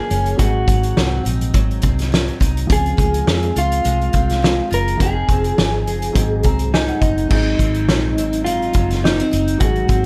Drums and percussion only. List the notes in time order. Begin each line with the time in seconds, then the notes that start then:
0.11 closed hi-hat
0.26 closed hi-hat
0.39 kick, closed hi-hat
0.68 kick, closed hi-hat
0.83 closed hi-hat
0.97 snare
1.26 closed hi-hat
1.41 closed hi-hat
1.54 kick, closed hi-hat
1.71 closed hi-hat
1.82 kick, closed hi-hat
1.99 snare, closed hi-hat
2.14 snare
2.28 closed hi-hat
2.41 kick, closed hi-hat
2.57 closed hi-hat
2.70 kick, closed hi-hat
2.86 closed hi-hat
2.98 kick, closed hi-hat
3.14 closed hi-hat
3.27 snare
3.42 closed hi-hat
3.56 closed hi-hat
3.72 closed hi-hat
3.85 closed hi-hat
4.01 closed hi-hat
4.13 kick, closed hi-hat
4.30 snare, closed hi-hat
4.44 snare
4.72 closed hi-hat
4.88 closed hi-hat
5.00 kick, closed hi-hat
5.29 kick, closed hi-hat
5.44 closed hi-hat
5.58 snare
5.87 closed hi-hat
6.02 closed hi-hat
6.15 kick, closed hi-hat
6.43 kick, closed hi-hat
6.59 closed hi-hat
6.74 snare
6.88 closed hi-hat
7.02 kick, closed hi-hat
7.18 closed hi-hat
7.30 kick, crash
7.59 kick, closed hi-hat
7.74 closed hi-hat
7.89 snare
8.18 closed hi-hat
8.33 closed hi-hat
8.46 closed hi-hat
8.62 closed hi-hat
8.73 kick, closed hi-hat
8.90 snare, closed hi-hat
9.05 snare
9.19 closed hi-hat
9.33 closed hi-hat
9.48 closed hi-hat
9.60 kick, closed hi-hat
9.76 closed hi-hat
9.89 kick, closed hi-hat